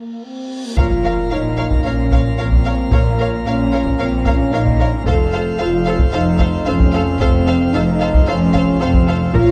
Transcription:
0.00 0.22 A#3 soft
0.00 reverse cymbal soft
0.23 0.64 C4 soft
0.65 0.78 A#3 soft
0.76 1.25 A#1 soft
0.76 1.25 A#2 soft
0.76 5.03 A#3 soft
0.76 1.31 F4 medium
0.76 5.03 F4 soft
0.76 0.85 A#4 soft
0.76 5.03 A#4 soft
0.76 0.86 C#5 soft
0.76 0.85 F5 soft
0.76 5.02 F5 soft
0.76 taiko medium
0.76 impact medium
1.04 1.12 A#4 soft
1.04 1.12 C#5 soft
1.04 1.13 F5 soft
1.30 1.79 A#1 soft
1.30 1.78 A#2 soft
1.30 1.85 D#4 medium
1.30 1.40 A#4 soft
1.30 1.39 C#5 soft
1.30 1.38 F5 soft
1.57 1.66 A#4 soft
1.57 1.66 C#5 soft
1.57 1.65 F5 soft
1.71 taiko medium
1.85 2.32 A#1 soft
1.85 2.32 A#2 soft
1.85 2.39 C#4 medium
1.85 1.94 A#4 soft
1.85 1.93 C#5 soft
1.85 1.93 F5 soft
2.11 2.20 A#4 soft
2.11 2.21 C#5 soft
2.11 2.21 F5 soft
2.11 taiko medium
2.38 2.86 A#1 soft
2.38 2.86 A#2 soft
2.38 2.92 C4 medium
2.38 2.48 A#4 soft
2.38 2.47 C#5 soft
2.38 2.46 F5 soft
2.52 taiko medium
2.65 2.74 A#4 soft
2.65 2.75 C#5 soft
2.65 2.73 F5 soft
2.91 3.39 A#1 medium
2.91 3.39 A#2 soft
2.91 3.46 A#3 medium
2.91 3.01 A#4 soft
2.91 3.01 C#5 soft
2.91 3.00 F5 soft
2.91 taiko medium
3.18 3.26 A#4 soft
3.18 3.28 C#5 soft
3.18 3.28 F5 soft
3.45 3.93 A#1 soft
3.45 3.93 A#2 medium
3.45 4.00 C#4 medium
3.45 3.54 A#4 soft
3.45 3.54 C#5 soft
3.45 3.55 F5 soft
3.72 3.80 A#4 soft
3.72 3.81 C#5 soft
3.72 3.81 F5 soft
3.85 taiko medium
3.99 4.47 A#1 medium
3.99 4.46 A#2 soft
3.99 4.26 C4 medium
3.99 4.07 A#4 soft
3.99 4.08 C#5 soft
3.99 4.08 F5 soft
4.26 4.54 C#4 medium
4.26 4.34 A#4 soft
4.26 4.35 C#5 soft
4.26 4.34 F5 soft
4.26 taiko medium
4.52 5.00 A#1 medium
4.52 5.00 A#2 medium
4.52 4.93 D#4 medium
4.52 4.61 A#4 soft
4.52 4.60 C#5 soft
4.52 4.61 F5 soft
4.66 taiko medium
4.80 4.88 A#4 soft
4.80 4.88 C#5 soft
4.80 4.88 F5 soft
4.93 5.06 C#4 medium
5.05 5.53 F1 medium
5.05 5.53 F2 medium
5.05 9.35 A3 medium
5.05 9.31 F4 soft
5.05 5.59 A4 medium
5.05 5.15 A4 soft
5.05 5.15 C5 medium
5.05 9.35 C5 soft
5.05 5.14 F5 soft
5.05 9.31 F5 medium
5.05 taiko medium
5.33 5.42 A4 soft
5.33 5.42 C5 medium
5.33 5.41 F5 soft
5.59 6.07 F1 medium
5.59 6.07 F2 medium
5.59 5.97 F4 medium
5.59 5.68 A4 soft
5.59 5.67 C5 soft
5.59 5.67 F5 soft
5.85 5.96 A4 medium
5.85 5.94 C5 soft
5.85 5.93 F5 soft
5.99 taiko medium
6.12 6.60 F1 medium
6.12 6.60 F2 medium
6.12 6.66 D#4 medium
6.12 6.21 A4 medium
6.12 6.21 C5 medium
6.12 6.20 F5 medium
6.39 6.48 A4 soft
6.39 6.48 C5 medium
6.39 6.47 F5 soft
6.39 taiko medium
6.66 7.14 F1 medium
6.66 7.14 F2 medium
6.66 7.20 C#4 medium
6.66 6.75 A4 soft
6.66 6.74 C5 medium
6.66 6.74 F5 medium
6.80 taiko medium
6.93 7.02 A4 medium
6.93 7.01 C5 soft
6.93 7.01 F5 soft
7.19 7.67 F1 medium
7.19 7.68 F2 medium
7.19 7.74 C4 medium
7.19 7.29 A4 medium
7.19 7.28 C5 medium
7.19 7.28 F5 medium
7.19 taiko medium
7.47 7.55 A4 medium
7.47 7.55 C5 medium
7.47 7.55 F5 medium
7.73 8.21 F1 medium
7.73 8.21 F2 medium
7.73 8.27 D#4 loud
7.73 7.82 A4 medium
7.73 7.82 C5 soft
7.73 7.81 F5 medium
8.00 8.08 A4 medium
8.00 8.09 C5 medium
8.00 8.08 F5 medium
8.14 taiko medium
8.27 8.74 F1 medium
8.27 8.75 F2 medium
8.27 8.81 C#4 medium
8.27 8.35 A4 medium
8.27 8.36 C5 medium
8.27 8.36 F5 medium
8.53 8.63 A4 soft
8.53 8.64 C5 medium
8.53 8.61 F5 medium
8.53 taiko medium
8.80 9.28 F1 medium
8.80 9.28 F2 medium
8.80 9.08 C4 medium
8.80 8.88 A4 medium
8.80 8.89 C5 medium
8.80 8.89 F5 medium
8.94 taiko medium
9.07 9.15 A4 medium
9.07 9.16 C5 medium
9.07 9.16 F5 medium
9.33 9.40 A#1 medium
9.33 9.51 A#2 medium
9.33 9.40 A#2 medium
9.33 9.51 A#3 medium
9.33 9.51 F4 loud
9.33 9.51 F4 medium
9.33 9.40 A#4 medium
9.33 9.51 A#4 medium
9.33 9.51 C#5 medium
9.33 9.51 F5 medium
9.33 taiko medium

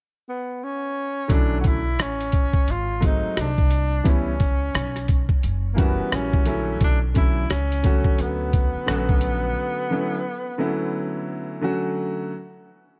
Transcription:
0.29 0.65 B3 medium
0.64 1.35 C#4 medium
1.28 1.98 B1 loud
1.28 1.80 D3 medium
1.28 1.80 F#3 medium
1.28 1.81 A3 medium
1.28 1.81 C#4 medium
1.28 1.81 E4 medium
1.28 kick loud
1.28 closed hi-hat medium
1.33 1.60 D4 medium
1.61 1.69 F#4 medium
1.61 kick medium
1.61 closed hi-hat medium
1.67 2.04 E4 medium
1.98 2.51 A1 medium
1.98 2.73 C#4 medium
1.98 cross-stick loud
1.98 closed hi-hat medium
2.21 closed hi-hat medium
2.32 kick medium
2.32 closed hi-hat medium
2.53 muted upright bass stroke soft
2.53 kick medium
2.68 3.20 G#1 medium
2.68 3.04 F4 loud
2.68 closed hi-hat medium
3.01 3.44 F#3 medium
3.01 3.44 G#3 medium
3.01 3.45 A3 medium
3.01 3.45 C4 medium
3.01 3.45 D#4 medium
3.01 kick medium
3.01 closed hi-hat medium
3.07 3.43 D#4 medium
3.24 muted upright bass stroke soft
3.37 4.02 C2 medium
3.37 cross-stick loud
3.37 closed hi-hat medium
3.41 4.11 D4 medium
3.58 kick medium
3.71 closed hi-hat medium
4.04 4.71 C#2 loud
4.04 4.31 E3 medium
4.04 4.31 G3 medium
4.04 4.31 B3 medium
4.04 4.32 C#4 medium
4.04 4.32 E4 medium
4.04 kick medium
4.04 closed hi-hat medium
4.10 5.45 C#4 medium
4.40 kick medium
4.40 closed hi-hat medium
4.74 5.27 B1 medium
4.74 cross-stick loud
4.74 closed hi-hat medium
4.96 cross-stick soft
4.96 closed hi-hat medium
5.08 kick medium
5.08 closed hi-hat medium
5.29 muted upright bass stroke soft
5.29 kick medium
5.43 5.96 F#1 medium
5.43 closed hi-hat medium
5.74 6.75 E3 medium
5.74 6.75 G3 medium
5.74 5.81 A#3 medium
5.74 6.46 C#4 medium
5.74 6.75 A#4 medium
5.78 6.17 B3 medium
5.78 6.76 F#4 medium
5.78 kick medium
5.78 closed hi-hat medium
6.00 muted upright bass stroke soft
6.12 6.78 A#1 medium
6.12 6.83 C#4 medium
6.12 cross-stick loud
6.12 closed hi-hat medium
6.33 kick medium
6.45 6.97 D3 medium
6.45 6.98 F#3 medium
6.45 6.98 A3 medium
6.45 6.98 C#4 medium
6.45 6.99 E4 medium
6.45 closed hi-hat medium
6.81 7.47 B1 medium
6.81 6.99 D4 medium
6.81 kick loud
6.81 closed hi-hat medium
7.14 7.41 D3 medium
7.14 7.42 F#3 medium
7.14 7.42 A3 medium
7.14 7.42 C#4 medium
7.14 7.43 E4 medium
7.14 7.49 E4 loud
7.14 kick medium
7.14 closed hi-hat medium
7.50 8.03 C#2 medium
7.50 8.23 C#4 medium
7.50 cross-stick loud
7.50 closed hi-hat medium
7.72 closed hi-hat medium
7.83 8.82 D3 medium
7.83 8.82 F#3 medium
7.83 8.83 A3 medium
7.83 8.83 C#4 medium
7.83 8.83 F#4 medium
7.83 kick medium
7.83 closed hi-hat medium
8.04 muted upright bass stroke soft
8.04 kick medium
8.19 8.72 D2 medium
8.19 11.65 B3 medium
8.19 closed hi-hat medium
8.53 kick medium
8.53 closed hi-hat medium
8.74 muted upright bass stroke soft
8.86 9.54 A#1 medium
8.86 9.85 D3 medium
8.86 9.86 F#3 medium
8.86 9.86 A3 medium
8.86 9.86 C#4 medium
8.86 9.86 F#4 medium
8.86 cross-stick loud
8.86 closed hi-hat medium
9.09 kick medium
9.21 closed hi-hat medium
9.90 10.17 D3 medium
9.90 10.17 F#3 medium
9.90 10.18 A3 medium
9.90 10.18 C#4 medium
9.90 10.18 E4 medium
10.58 11.57 D3 medium
10.58 11.58 F#3 medium
10.58 11.58 A3 medium
10.58 11.58 C#4 medium
10.58 11.59 E4 medium
11.61 12.32 D3 medium
11.61 12.32 F#3 medium
11.61 12.32 A3 medium
11.61 12.33 C#4 medium
11.61 12.33 F#4 medium

